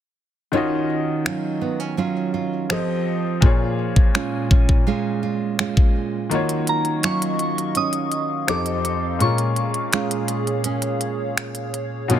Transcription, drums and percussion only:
1.26 finger snap medium
2.70 finger snap loud
3.42 kick loud
3.96 kick medium
4.15 finger snap medium
4.51 kick loud
4.69 kick medium
5.59 finger snap loud
5.77 kick loud
6.31 closed hi-hat medium
6.49 closed hi-hat soft
6.67 closed hi-hat medium
6.85 closed hi-hat soft
7.03 finger snap loud
7.03 closed hi-hat medium
7.22 closed hi-hat medium
7.39 closed hi-hat medium
7.58 closed hi-hat soft
7.75 closed hi-hat medium
7.93 closed hi-hat medium
8.12 closed hi-hat medium
8.48 finger snap loud
8.48 closed hi-hat medium
8.66 closed hi-hat soft
8.85 closed hi-hat medium
9.21 closed hi-hat medium
9.38 closed hi-hat soft
9.56 closed hi-hat medium
9.74 closed hi-hat soft
9.93 finger snap medium
9.93 closed hi-hat medium
10.11 closed hi-hat medium
10.28 closed hi-hat medium
10.47 closed hi-hat soft
10.64 closed hi-hat medium
10.82 closed hi-hat medium
11.01 closed hi-hat medium
11.38 finger snap loud
11.38 closed hi-hat medium
11.55 closed hi-hat soft
11.74 closed hi-hat medium
12.10 closed hi-hat medium

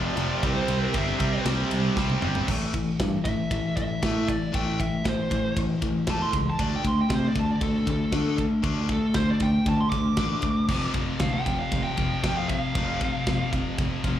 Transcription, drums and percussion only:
0.17 ride medium
0.43 kick loud
0.43 ride loud
0.68 ride medium
0.94 kick loud
0.94 ride loud
1.20 kick medium
1.20 ride medium
1.46 snare loud
1.46 ride loud
1.71 ride medium
1.97 kick medium
1.97 snare medium
2.10 high tom medium
2.22 mid tom loud
2.35 floor tom loud
2.48 kick loud
2.48 crash loud
2.74 kick medium
2.74 ride medium
3.00 kick loud
3.00 snare loud
3.00 ride medium
3.25 kick loud
3.25 ride medium
3.51 kick loud
3.51 ride loud
3.77 kick medium
3.77 ride medium
4.03 kick loud
4.03 snare loud
4.03 ride loud
4.28 kick medium
4.28 ride medium
4.54 kick loud
4.54 ride medium
4.80 kick medium
4.80 ride medium
5.05 kick loud
5.05 snare loud
5.05 ride loud
5.31 kick medium
5.31 ride medium
5.57 kick loud
5.57 ride loud
5.82 kick medium
5.82 ride medium
6.07 kick loud
6.07 snare loud
6.07 ride loud
6.33 kick medium
6.33 ride medium
6.59 kick loud
6.59 ride loud
6.85 kick medium
6.85 ride medium
7.10 kick loud
7.10 snare loud
7.10 ride loud
7.35 kick medium
7.35 ride medium
7.61 kick loud
7.61 ride loud
7.87 kick medium
7.87 ride medium
8.12 kick loud
8.12 snare loud
8.12 ride loud
8.38 kick medium
8.38 ride medium
8.64 kick loud
8.64 ride medium
8.89 kick medium
8.89 ride medium
9.14 kick loud
9.14 snare loud
9.14 ride medium
9.40 kick medium
9.40 ride medium
9.66 kick loud
9.66 ride loud
9.92 kick medium
9.92 ride medium
10.17 kick loud
10.17 snare loud
10.17 ride loud
10.42 kick medium
10.42 ride medium
10.69 kick loud
10.69 crash loud
10.94 kick loud
10.94 ride medium
11.20 kick loud
11.20 snare loud
11.20 ride loud
11.46 kick medium
11.46 ride medium
11.72 kick loud
11.72 ride loud
11.97 kick loud
11.97 ride medium
12.24 kick loud
12.24 snare loud
12.24 ride loud
12.49 kick medium
12.49 ride medium
12.75 kick loud
12.75 ride loud
13.01 kick medium
13.01 ride medium
13.27 kick loud
13.27 snare loud
13.27 ride medium
13.53 kick medium
13.53 ride medium
13.78 kick loud
13.78 ride loud
14.04 kick loud
14.04 ride medium

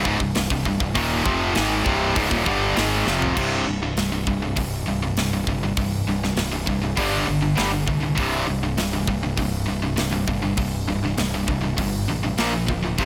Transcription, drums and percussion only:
0.05 kick medium
0.20 kick medium
0.35 snare loud
0.35 open hi-hat medium
0.50 kick loud
0.65 kick medium
0.80 kick medium
0.95 kick loud
0.95 open hi-hat medium
1.26 kick loud
1.55 snare loud
1.55 open hi-hat medium
1.86 kick loud
2.16 kick loud
2.16 open hi-hat medium
2.31 kick medium
2.46 kick medium
2.77 snare loud
2.77 open hi-hat medium
3.07 snare medium
3.22 floor tom loud
3.37 kick loud
3.37 crash medium
3.97 snare loud
3.97 open hi-hat medium
4.27 kick medium
4.57 kick medium
4.57 open hi-hat medium
5.17 snare loud
5.17 open hi-hat medium
5.47 kick medium
5.77 kick loud
5.77 open hi-hat medium
6.23 snare soft
6.37 snare loud
6.37 open hi-hat medium
6.67 kick medium
6.97 kick medium
6.97 open hi-hat medium
7.57 snare medium
7.57 open hi-hat soft
7.88 kick medium
8.18 kick loud
8.18 open hi-hat medium
8.78 snare loud
8.78 open hi-hat soft
9.07 kick medium
9.38 kick medium
9.38 open hi-hat medium
9.97 snare loud
9.97 open hi-hat soft
10.28 kick medium
10.57 kick loud
10.57 open hi-hat medium
11.18 snare loud
11.18 open hi-hat medium
11.48 kick medium
11.78 kick medium
11.78 open hi-hat medium
12.38 snare loud
12.38 open hi-hat soft
12.68 kick medium
12.98 kick loud
12.98 open hi-hat medium

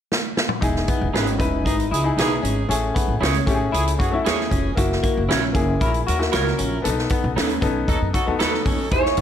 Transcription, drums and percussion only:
0.12 snare medium
0.37 snare medium
0.49 mid tom medium
0.62 kick medium
0.62 closed hi-hat medium
0.76 snare soft
0.88 kick medium
0.88 closed hi-hat medium
1.15 snare loud
1.15 closed hi-hat medium
1.27 closed hi-hat medium
1.40 kick medium
1.40 closed hi-hat medium
1.66 kick medium
1.66 closed hi-hat medium
1.80 closed hi-hat soft
1.94 closed hi-hat medium
2.18 snare loud
2.18 closed hi-hat medium
2.45 closed hi-hat medium
2.71 closed hi-hat medium
2.96 kick medium
2.96 closed hi-hat medium
3.23 snare loud
3.23 closed hi-hat medium
3.34 closed hi-hat medium
3.47 kick medium
3.47 closed hi-hat medium
3.74 closed hi-hat medium
3.88 closed hi-hat medium
4.00 kick medium
4.00 closed hi-hat medium
4.26 snare loud
4.26 closed hi-hat medium
4.41 snare soft
4.51 kick medium
4.51 closed hi-hat medium
4.77 kick medium
4.77 closed hi-hat medium
4.92 snare soft
5.03 kick medium
5.03 closed hi-hat medium
5.31 snare loud
5.31 closed hi-hat medium
5.55 kick medium
5.55 closed hi-hat medium
5.81 kick medium
5.81 closed hi-hat medium
5.94 closed hi-hat medium
6.08 closed hi-hat medium
6.21 snare soft
6.33 snare loud
6.33 closed hi-hat medium
6.47 snare soft
6.59 closed hi-hat medium
6.85 closed hi-hat medium
6.99 snare soft
7.10 kick medium
7.10 closed hi-hat medium
7.38 snare loud
7.38 closed hi-hat medium
7.49 closed hi-hat medium
7.62 kick medium
7.62 closed hi-hat medium
7.88 kick medium
7.88 closed hi-hat medium
8.14 kick medium
8.14 closed hi-hat medium
8.40 snare loud
8.40 closed hi-hat medium
8.54 snare soft
8.66 kick medium
8.66 open hi-hat soft
8.91 kick medium
8.91 closed hi-hat medium
9.05 snare soft
9.17 kick medium
9.17 closed hi-hat medium

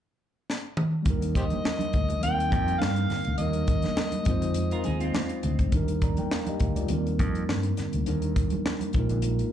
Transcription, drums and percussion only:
0.50 snare medium
0.77 mid tom medium
1.05 kick medium
1.05 closed hi-hat medium
1.05 low conga medium
1.22 closed hi-hat medium
1.22 muted conga soft
1.35 kick medium
1.35 closed hi-hat medium
1.50 closed hi-hat soft
1.50 high conga medium
1.64 snare loud
1.64 muted conga soft
1.79 closed hi-hat medium
1.79 muted conga soft
1.79 high conga medium
1.93 kick medium
1.93 closed hi-hat medium
2.09 closed hi-hat soft
2.09 low conga medium
2.21 closed hi-hat medium
2.21 high conga medium
2.40 closed hi-hat soft
2.50 kick medium
2.50 closed hi-hat medium
2.50 high conga medium
2.68 closed hi-hat soft
2.80 snare medium
2.80 high conga medium
2.96 closed hi-hat soft
2.96 muted conga soft
3.10 snare soft
3.10 open hi-hat soft
3.10 low conga medium
3.25 closed hi-hat soft
3.38 closed hi-hat medium
3.38 low conga medium
3.53 closed hi-hat soft
3.53 muted conga soft
3.67 kick medium
3.67 closed hi-hat medium
3.82 snare soft
3.82 closed hi-hat soft
3.82 high conga medium
3.96 snare loud
3.96 muted conga soft
4.12 closed hi-hat medium
4.12 high conga medium
4.25 kick loud
4.25 closed hi-hat medium
4.42 closed hi-hat medium
4.42 low conga medium
4.54 closed hi-hat medium
4.54 muted conga soft
4.54 high conga medium
4.71 closed hi-hat soft
4.71 muted conga soft
4.84 closed hi-hat medium
4.84 high conga medium
5.00 closed hi-hat soft
5.14 snare loud
5.14 muted conga soft
5.14 high conga medium
5.29 closed hi-hat soft
5.43 closed hi-hat medium
5.43 low conga medium
5.59 kick medium
5.59 closed hi-hat medium
5.72 kick medium
5.72 closed hi-hat medium
5.72 low conga medium
5.88 closed hi-hat medium
5.88 muted conga soft
6.02 kick medium
6.02 closed hi-hat medium
6.17 closed hi-hat soft
6.17 high conga medium
6.31 snare loud
6.46 closed hi-hat medium
6.46 muted conga soft
6.46 high conga medium
6.60 kick medium
6.60 closed hi-hat medium
6.76 closed hi-hat medium
6.76 low conga medium
6.88 closed hi-hat medium
6.88 muted conga soft
6.88 high conga medium
7.07 closed hi-hat soft
7.07 muted conga soft
7.19 kick medium
7.19 closed hi-hat medium
7.19 high conga medium
7.35 closed hi-hat soft
7.49 snare medium
7.49 high conga medium
7.63 closed hi-hat soft
7.63 muted conga soft
7.77 snare soft
7.77 closed hi-hat medium
7.77 low conga medium
7.93 closed hi-hat medium
8.06 closed hi-hat medium
8.06 muted conga soft
8.06 low conga medium
8.22 closed hi-hat soft
8.36 kick medium
8.36 closed hi-hat medium
8.50 closed hi-hat soft
8.50 high conga medium
8.66 snare loud
8.80 closed hi-hat medium
8.80 high conga medium
8.93 kick medium
8.93 closed hi-hat soft
9.09 closed hi-hat soft
9.09 low conga medium
9.22 closed hi-hat medium
9.22 muted conga soft
9.22 high conga medium
9.39 closed hi-hat soft
9.39 muted conga soft

